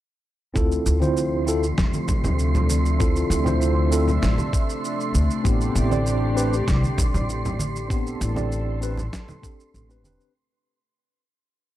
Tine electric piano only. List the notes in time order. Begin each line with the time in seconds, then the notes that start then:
0.54 C4 E4 F4 A4
1.00 C4 E4 F4 C5
1.46 C4 E4 F4 A4
2.99 C4 E4 F4 A4
3.45 C4 E4 F4 C5
3.91 C4 E4 F4 A4
5.44 B3 C4 D4 G4
5.90 C4 D4 G4 D5
6.35 C4 D4 G4 B4
7.89 B3 C4 D4 G4
8.35 C4 D4 G4 D5
8.81 C4 D4 G4 B4
9.42 C4 D4 G4 A4
9.89 C4 D4 G4 B4
10.04 C4 D4 G4 B4